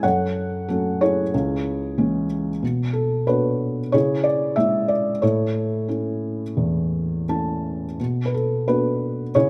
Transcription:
felt piano
0.03 F#2 A4 C#5 F#5
0.69 F#3 A3 C#4 A4
1.01 E4 G#4 C#5
1.34 C#2
1.98 E3 G#3 C#4
2.62 B2
2.93 A4
3.27 B3 D4 F#4 B4 C#5
3.92 C#3 E4 G#4 C#5
4.24 D5
4.56 G#3 E4 E5
4.88 D5
5.22 A2 E4 A4 C#5
5.88 A3 C#4 E4
6.57 E2
7.29 A3 C#4 E4 A5
8.00 B2
8.26 B4
8.34 A4
8.68 B3 D4 F#4 B4
9.35 C#3 E4 G#4 C#5

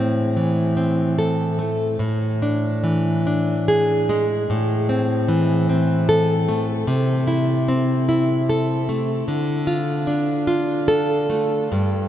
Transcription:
nylon-string guitar
Already playing: A2 C4
0.37 E3
0.77 C4
1.19 A4
1.59 A3
1.99 A2
2.42 D4
2.84 E3
3.27 D4
3.68 G#4
4.09 G#3
4.50 A2
4.89 C4
5.28 E3
5.69 C4
6.09 A4
6.49 A3
6.87 C3
7.27 E4
7.68 C4
8.09 E4
8.49 A4
8.89 A3
9.28 D3
9.67 F4
10.07 D4
10.47 F4
10.88 A4
11.30 A3
11.72 G2

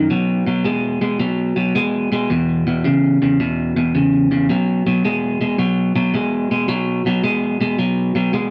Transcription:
clean electric guitar
0.10 B2 F#3
0.47 B2 F#3
0.65 B2 G#3
1.01 B2 G#3
1.19 B2 F#3
1.56 B2 F#3
1.75 B2 G#3
2.12 B2 G#3
2.30 E2 B2
2.67 E2 B2
2.84 E2 C#3
3.22 E2 C#3
3.40 E2 B2
3.76 E2 B2
3.95 E2 C#3
4.31 E2 C#3
4.49 B2 F#3
4.87 B2 F#3
5.05 B2 G#3
5.41 B2 G#3
5.59 B2 F#3
5.96 B2 F#3
6.14 B2 G#3
6.51 B2 G#3
6.68 B2 F#3
7.06 B2 F#3
7.24 B2 G#3
7.61 B2 G#3
7.79 B2 F#3
8.15 B2 F#3
8.33 B2 G#3

